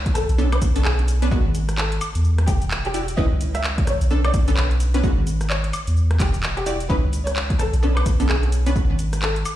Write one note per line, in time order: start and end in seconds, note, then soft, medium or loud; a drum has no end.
0.00 0.27 C#2 loud
0.06 kick loud
0.06 closed hi-hat medium
0.15 0.33 A4 medium
0.15 cross-stick medium
0.15 closed hi-hat loud
0.15 cabasa medium
0.29 0.60 B1 loud
0.29 closed hi-hat medium
0.29 cabasa soft
0.38 0.49 B3 medium
0.38 0.49 C#4 medium
0.38 0.49 D4 medium
0.38 0.49 A4 medium
0.38 cabasa soft
0.52 0.68 B4 medium
0.52 cross-stick medium
0.52 closed hi-hat medium
0.52 high woodblock medium
0.62 1.30 B1 loud
0.62 kick loud
0.62 closed hi-hat loud
0.62 cabasa medium
0.76 1.19 B3 medium
0.76 1.19 C#4 medium
0.76 1.19 D4 medium
0.76 1.19 A4 medium
0.76 closed hi-hat medium
0.76 cabasa soft
0.85 1.03 G#4 loud
0.85 clap loud
0.85 cabasa soft
0.99 closed hi-hat soft
1.08 closed hi-hat loud
1.08 cabasa medium
1.22 1.29 B3 medium
1.22 1.29 C#4 medium
1.22 1.29 D4 medium
1.22 1.29 B4 loud
1.22 closed hi-hat medium
1.22 cabasa soft
1.31 1.44 G#1 loud
1.31 1.42 G#3 medium
1.31 1.42 A#3 medium
1.31 1.42 B3 medium
1.31 1.42 F#4 medium
1.31 kick loud
1.31 cabasa soft
1.45 2.00 G#1 medium
1.55 closed hi-hat loud
1.55 cabasa medium
1.69 cross-stick medium
1.69 closed hi-hat medium
1.69 cabasa soft
1.78 1.96 A4 medium
1.78 clap loud
1.78 cabasa soft
1.92 closed hi-hat medium
2.01 closed hi-hat loud
2.01 cabasa medium
2.01 high woodblock medium
2.15 2.46 E2 loud
2.15 closed hi-hat medium
2.15 cabasa soft
2.24 cabasa soft
2.38 cross-stick medium
2.38 closed hi-hat medium
2.48 2.60 E1 medium
2.48 2.66 G4 medium
2.48 kick loud
2.48 closed hi-hat loud
2.48 cabasa medium
2.62 3.16 E1 medium
2.62 closed hi-hat medium
2.62 cabasa soft
2.71 clap loud
2.71 cabasa soft
2.85 3.00 G4 loud
2.85 closed hi-hat soft
2.94 3.05 E4 medium
2.94 3.05 F#4 medium
2.94 3.05 G4 medium
2.94 3.05 D5 medium
2.94 closed hi-hat loud
2.94 cabasa medium
3.08 closed hi-hat medium
3.08 cabasa soft
3.17 3.30 C#2 loud
3.17 3.28 C#4 medium
3.17 3.28 D#4 medium
3.17 3.28 E4 medium
3.17 3.28 B4 loud
3.17 3.36 D#5 loud
3.17 kick loud
3.17 cabasa soft
3.31 3.99 C#2 medium
3.41 closed hi-hat loud
3.41 cabasa medium
3.55 3.70 E5 medium
3.55 cross-stick medium
3.55 closed hi-hat medium
3.55 cabasa soft
3.64 clap loud
3.64 cabasa soft
3.78 kick loud
3.78 closed hi-hat soft
3.87 4.05 C#5 loud
3.87 cross-stick medium
3.87 closed hi-hat loud
3.87 cabasa medium
4.01 4.32 B1 loud
4.01 closed hi-hat medium
4.01 cabasa soft
4.10 4.21 B3 medium
4.10 4.21 C#4 medium
4.10 4.21 D4 medium
4.10 4.21 A4 medium
4.10 cabasa soft
4.25 4.40 D5 loud
4.25 cross-stick medium
4.25 closed hi-hat medium
4.25 high woodblock medium
4.34 5.02 B1 loud
4.34 kick loud
4.34 closed hi-hat loud
4.34 cabasa medium
4.48 4.91 B3 medium
4.48 4.91 C#4 medium
4.48 4.91 D4 medium
4.48 4.91 A4 loud
4.48 closed hi-hat medium
4.48 cabasa soft
4.57 4.75 B4 loud
4.57 clap loud
4.57 cabasa soft
4.71 closed hi-hat soft
4.80 closed hi-hat loud
4.80 cabasa medium
4.94 5.01 B3 medium
4.94 5.01 C#4 medium
4.94 5.01 D4 medium
4.94 5.01 B4 loud
4.94 closed hi-hat medium
4.94 cabasa soft
5.04 5.16 G#1 loud
5.04 5.14 G#3 medium
5.04 5.14 A#3 medium
5.04 5.14 B3 medium
5.04 5.14 F#4 loud
5.04 kick loud
5.04 cabasa soft
5.18 5.72 G#1 medium
5.27 closed hi-hat loud
5.27 cabasa medium
5.41 cross-stick medium
5.41 closed hi-hat medium
5.41 cabasa soft
5.50 5.68 C#5 loud
5.50 clap loud
5.50 cabasa soft
5.64 closed hi-hat medium
5.73 closed hi-hat loud
5.73 cabasa medium
5.73 high woodblock medium
5.87 6.18 E2 loud
5.87 closed hi-hat medium
5.87 cabasa soft
5.97 cabasa soft
6.11 cross-stick medium
6.11 closed hi-hat medium
6.20 6.32 E1 medium
6.20 6.38 G4 medium
6.20 kick loud
6.20 clap medium
6.20 closed hi-hat loud
6.20 cabasa medium
6.34 6.88 E1 medium
6.34 closed hi-hat medium
6.34 cabasa soft
6.43 clap loud
6.43 cabasa soft
6.57 6.73 G4 medium
6.57 closed hi-hat soft
6.66 6.77 E4 medium
6.66 6.77 F#4 medium
6.66 6.77 G4 medium
6.66 6.77 D5 medium
6.66 closed hi-hat loud
6.66 cabasa medium
6.80 closed hi-hat medium
6.80 cabasa soft
6.90 7.02 C#2 loud
6.90 7.00 C#4 medium
6.90 7.00 D#4 medium
6.90 7.00 E4 medium
6.90 7.00 B4 loud
6.90 7.08 B4 medium
6.90 kick loud
6.90 cabasa soft
7.04 7.71 C#2 medium
7.13 closed hi-hat loud
7.13 cabasa medium
7.27 7.42 C#5 medium
7.27 cross-stick medium
7.27 closed hi-hat medium
7.27 cabasa soft
7.36 clap loud
7.36 cabasa soft
7.50 kick loud
7.50 closed hi-hat medium
7.59 7.77 A4 medium
7.59 cross-stick medium
7.59 closed hi-hat loud
7.59 cabasa medium
7.73 8.04 B1 loud
7.73 closed hi-hat medium
7.73 cabasa soft
7.83 7.93 B3 medium
7.83 7.94 C#4 medium
7.83 7.94 D4 medium
7.83 7.94 A4 medium
7.83 cabasa soft
7.97 8.12 B4 loud
7.97 cross-stick medium
7.97 closed hi-hat medium
7.97 high woodblock medium
8.06 8.74 B1 medium
8.06 kick loud
8.06 closed hi-hat loud
8.06 cabasa medium
8.20 8.63 B3 medium
8.20 8.63 C#4 medium
8.20 8.63 D4 medium
8.20 8.63 A4 medium
8.20 closed hi-hat medium
8.20 cabasa soft
8.29 8.47 G#4 loud
8.29 clap loud
8.29 cabasa soft
8.43 closed hi-hat soft
8.52 closed hi-hat loud
8.52 cabasa medium
8.66 8.73 B3 medium
8.66 8.73 C#4 medium
8.66 8.74 D4 medium
8.66 8.73 B4 loud
8.66 closed hi-hat medium
8.66 cabasa soft
8.76 8.88 G#1 loud
8.76 kick loud
8.76 cabasa soft
8.90 9.44 G#1 medium
8.99 closed hi-hat loud
8.99 cabasa medium
9.13 cross-stick medium
9.13 closed hi-hat medium
9.13 cabasa soft
9.22 9.40 A4 medium
9.22 clap loud
9.22 cabasa soft
9.36 closed hi-hat medium
9.45 closed hi-hat loud
9.45 cabasa medium
9.45 high woodblock medium